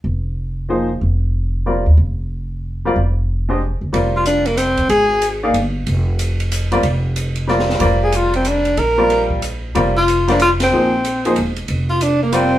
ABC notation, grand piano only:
X:1
M:3/4
L:1/8
Q:"Swing" 1/4=186
K:Fdor
V:1 name="Grand piano"
z4 [F,B,EAc] z | z4 [G,CFBd] z | z4 z [G,CFBd] | z3 [A,DGce] z2 |
[G,CFBd]4- [G,CFBd] z | z3 [B,EAdf] z2 | z4 z [G,CFBd] | z4 [G,CFBd]2 |
[G,CFBd]4- [G,CFBd] z | z [G,CFBd]3 z2 | [G,CFBd] z2 [G,CFBd] z2 | [F,B,EAc] z2 [F,B,EAc] z2 |
z4 [G,CFBd]2 |]